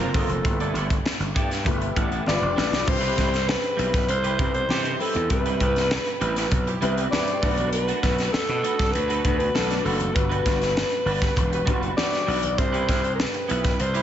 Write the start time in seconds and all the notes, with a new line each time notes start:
Already playing: A#3 F4 G#4 A#4 C5
0.00 F1 C4 F4 A#4 F5
0.14 G1 A#3 C4 F4 G#4 A4 A#4 C5 D#5, kick, open hi-hat, high conga
0.29 F1, muted clean electric guitar stroke, closed hi-hat, high conga
0.44 G1 A3 E4 G4 A4, muted clean electric guitar stroke, kick, closed hi-hat, muted conga
0.52 B4
0.60 B3 E4 A4 D5, closed hi-hat
0.74 G1 B3 E4 A4, closed hi-hat, muted conga
0.78 D5
0.90 muted clean electric guitar stroke, kick, closed hi-hat
1.06 snare, high conga
1.20 G1, muted clean electric guitar stroke, closed hi-hat
1.35 G2 B3 E4 A4 D5 G5, kick, closed hi-hat
1.51 muted clean electric guitar stroke, snare, closed hi-hat
1.65 G1 A3 E4 G4 B4 E5, muted clean electric guitar stroke, kick, closed hi-hat, muted conga, low conga
1.81 muted clean electric guitar stroke, closed hi-hat
1.96 A1 B3 E4 A4 D5 F#5, kick, closed hi-hat
2.12 B3 E4 A4 D5 G5, closed hi-hat
2.26 G1 G3 D4 F4 B4 D5 F5, muted clean electric guitar stroke, snare, high conga
2.42 F1 G5, muted clean electric guitar stroke
2.56 A1 G3 D4 F4 B4 D5 B5, snare, high conga
2.71 B1, muted clean electric guitar stroke, snare, high conga
2.86 C2 G3 C4 E4 G4 C5, muted clean electric guitar stroke, kick, crash
3.01 G3 C4 E4 B4, closed hi-hat
3.16 C2 G3 C4 E4 B4, kick, snare, closed hi-hat, muted conga
3.31 muted clean electric guitar stroke, snare, closed hi-hat
3.48 B4, snare, high conga
3.62 muted clean electric guitar stroke, closed hi-hat
3.76 B1 G3 C4 E4 B4, closed hi-hat
3.92 G3 E4 B4, muted clean electric guitar stroke, kick, snare, closed hi-hat
4.08 C2 C5, muted clean electric guitar stroke, closed hi-hat, muted conga
4.23 E3 G3 C4 E4 G4 B4, closed hi-hat
4.39 C2 G3 B3 C4 E4 B4, kick, closed hi-hat, low conga
4.54 C5, muted clean electric guitar stroke, closed hi-hat
4.69 C3 E3 G3 C4 D#4 G4 C5, muted clean electric guitar stroke, snare, high conga
4.76 E4
4.85 G3 C4 E4 C5, closed hi-hat
5.00 G3 C4 E4 A4 B4, open hi-hat
5.14 E2, muted clean electric guitar stroke, closed hi-hat, high conga
5.29 C2 G3 B3 C4 E4 A4 B4, muted clean electric guitar stroke, kick, closed hi-hat
5.37 B4
5.46 G3 C4 E4 B4, closed hi-hat
5.60 C2 G3 C4 E4 B4, kick, closed hi-hat, muted conga
5.76 muted clean electric guitar stroke, snare, closed hi-hat
5.91 snare, high conga
6.06 muted clean electric guitar stroke, closed hi-hat
6.21 A1 G3 C4 E4 B4, closed hi-hat
6.36 E3 C4 G4, muted clean electric guitar stroke, snare, closed hi-hat
6.51 B1, muted clean electric guitar stroke, kick, closed hi-hat, muted conga, low conga
6.67 E3 C4 G4, muted clean electric guitar stroke, closed hi-hat
6.81 C2 G3 B3 C4 E4 B4, closed hi-hat
6.95 G3 C4 E4 B4, closed hi-hat
7.11 F#3 G3 B3 C4 D4 E4 B4 D5 G5, muted clean electric guitar stroke, snare, high conga
7.27 muted clean electric guitar stroke, closed hi-hat
7.42 B1 A3 B3 D4 F#4 B4, kick, open hi-hat
7.57 A3 D4 F#4 B4, closed hi-hat, high conga
7.72 B4, muted clean electric guitar stroke, closed hi-hat
7.88 A3 D4 F#4 B4, closed hi-hat
8.03 B1 A3 D4 F#4 B4, kick, snare, closed hi-hat, muted conga
8.18 snare, closed hi-hat
8.28 B4
8.32 A4, muted slap bass stroke, snare, high conga
8.49 B2, muted clean electric guitar stroke, closed hi-hat
8.63 A3 D4 F#4 B4, closed hi-hat
8.79 C2 F#3 D4 A4, muted clean electric guitar stroke, kick, snare, closed hi-hat
8.92 D2 B4, muted clean electric guitar stroke, closed hi-hat, muted conga
9.08 F#3 A3 D4 F#4 A4 B4, closed hi-hat
9.24 D2 A3 B3 D4 F#4 B4, kick, closed hi-hat, low conga
9.39 B4, muted clean electric guitar stroke, closed hi-hat
9.54 B1 F#3 A3 B3 D4 F#4 A4 B4, muted clean electric guitar stroke, snare, high conga
9.69 A3 D4 F#4 D5, snare, closed hi-hat
9.84 F#1 A3 D4 F#4 A4 B4, open hi-hat
10.00 muted clean electric guitar stroke, closed hi-hat, high conga
10.14 G1 G3 B3 D4 F#4 B4, muted clean electric guitar stroke, kick, closed hi-hat
10.29 G3 D4 F#4 B4, closed hi-hat
10.45 G1 G3 D4 F#4 B4, kick, snare, closed hi-hat, muted conga
10.60 muted clean electric guitar stroke, snare, closed hi-hat
10.77 snare, high conga
10.90 muted clean electric guitar stroke, closed hi-hat
11.05 G1 G3 D4 F#4 B4, open hi-hat
11.21 G3 F#4 B4, muted clean electric guitar stroke, kick, snare, closed hi-hat
11.36 E1, muted clean electric guitar stroke, kick, closed hi-hat, muted conga, low conga
11.50 G3 F#4 B4, muted clean electric guitar stroke, closed hi-hat
11.65 F#1 G3 B3 D4 F#4 B4, kick, closed hi-hat
11.81 G3 D4 F#4 B4, closed hi-hat
11.96 G3 B3 D4 F#4 B4 D5, muted clean electric guitar stroke, snare, high conga
12.11 muted clean electric guitar stroke, snare, closed hi-hat
12.26 B1 G3 D4 F#4 B4, open hi-hat
12.42 muted clean electric guitar stroke, closed hi-hat, high conga
12.58 C2 G3 C4 E4 G4 C5, muted clean electric guitar stroke, kick, closed hi-hat
12.72 B3 E4 G4 B4, closed hi-hat
12.88 C2 B3 E4 G4 B4, kick, snare, closed hi-hat, muted conga
13.04 closed hi-hat
13.15 A#4
13.20 B4, snare, high conga
13.34 muted clean electric guitar stroke, closed hi-hat
13.48 B1 B3 E4 G4 B4, closed hi-hat
13.64 G3 E4 B4, muted clean electric guitar stroke, kick, snare, closed hi-hat
13.80 C2 C5, muted clean electric guitar stroke, closed hi-hat, muted conga
13.94 E3 B3 C4 E4 G4 B4, closed hi-hat